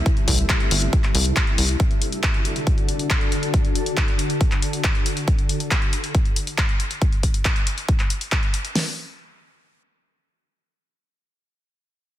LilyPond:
<<
  \new Staff \with { instrumentName = "Ambient pad" } { \time 4/4 \key d \mixolydian \tempo 4 = 138 <c g a e'>1 | <d d' fis' a'>1~ | <d d' fis' a'>1 | r1 |
r1 | r1 | r1 | }
  \new Staff \with { instrumentName = "Analog synth bass" } { \clef bass \time 4/4 \key d \mixolydian r8 c,8 r8 g,,8 r8 c,8 r8 c,8 | r1 | r1 | r1 |
r1 | r1 | r1 | }
  \new DrumStaff \with { instrumentName = "Drums" } \drummode { \time 4/4 <hh bd>16 hh16 <hho bd>16 hh16 <hc hh bd>16 hh16 hho16 hh16 <hh bd>16 <hc hh>16 hho16 hh16 <hc hh bd>16 hh16 hho16 hh16 | <hh bd>16 hh16 hh16 hh16 <hc hh bd>16 hh16 hh16 hh16 <hh bd>16 hh16 hh16 hh16 <hc hh bd>16 hh16 hh16 hh16 | <hh bd>16 hh16 hh16 hh16 <hc hh bd>16 hh16 hh16 hh16 <hh bd>16 <hc hh>16 hh16 hh16 <hc hh bd>16 hh16 hh16 hh16 | <hh bd>16 hh16 hh16 hh16 <hc hh bd>16 hh16 hh16 hh16 <hh bd>16 hh16 hh16 hh16 <hc hh bd>16 hh16 hh16 hh16 |
<hh bd>16 hh16 <hh bd>16 hh16 <hc hh bd>16 hh16 hh16 hh16 <hh bd>16 <hc hh>16 hh16 hh16 <hc hh bd>16 hh16 hh16 hh16 | <hho sn>4 r4 r4 r4 | r4 r4 r4 r4 | }
>>